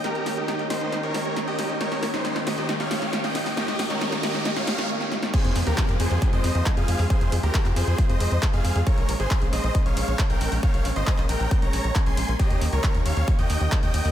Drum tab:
CC |----------------|----------------|----------------|x---------------|
HH |xxoxxxoxxxoxxxox|xxoxxxoxxxoxxxoo|xxoxxxoxxxox----|xxoxxxoxxxoxxxoo|
CP |----------------|----------------|----------------|----x-------x---|
SD |o-o-o-o-o-o-o-o-|oooooooooooooooo|oooooooooooo-ooo|----------------|
BD |----------------|----------------|----------------|o---o---o---o---|

CC |----------------|----------------|----------------|----------------|
HH |xxoxxxoxxxoxxxox|xxoxxxoxxxoxxxoo|xxoxxxoxxxoxxxox|xxoxxxoxxxoxxxoo|
CP |----xx------x---|----x-------x---|----xx------x---|----x-------x---|
SD |----------------|----------------|----------------|----------------|
BD |o---o---o---o---|o---o---o---o---|o---o---o---o---|o---o---o---o---|